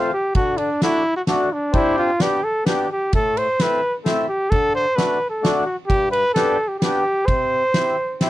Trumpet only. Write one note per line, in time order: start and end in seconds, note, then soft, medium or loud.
0.00 0.11 F4 medium
0.13 0.34 G4 medium
0.36 0.59 F#4 loud
0.57 0.81 D4 medium
0.83 1.15 E4 loud
1.16 1.22 F#4 medium
1.28 1.54 F#4 medium
1.53 1.77 D4 medium
1.75 1.98 E4 loud
1.98 2.23 F4 loud
2.22 2.45 G4 medium
2.44 2.66 A4 loud
2.67 2.88 G4 medium
2.92 3.12 G4 medium
3.15 3.39 A4 loud
3.38 3.63 C5 loud
3.61 3.95 B4 loud
4.29 4.52 G4 loud
4.50 4.74 A4 loud
4.75 4.97 C5 loud
4.96 5.29 B4 medium
5.29 5.52 A4 medium
5.66 5.76 F#4 medium
5.87 6.10 G4 loud
6.11 6.33 B4 loud
6.34 6.69 A4 loud
6.68 6.78 G4 medium
6.79 7.27 G4 loud
7.26 8.20 C5 loud